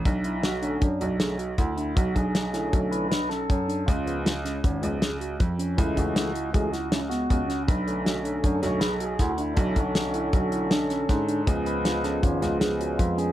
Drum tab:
HH |xxxxxxxxxx|xxxxxxxxxx|xxxxxxxxxx|xxxxxxxxxx|
SD |--o---o---|--oo--oo--|--oo--o---|--o--ooo-o|
BD |o---o---o-|oo--o---o-|o---o---o-|oo--o---o-|

HH |xxxxxxxxxx|xxxxxxxxxx|xxxxxxxxxx|
SD |--o--oo-o-|--o---ooo-|--oo-oo---|
BD |o---o---o-|oo--o---o-|o---o---o-|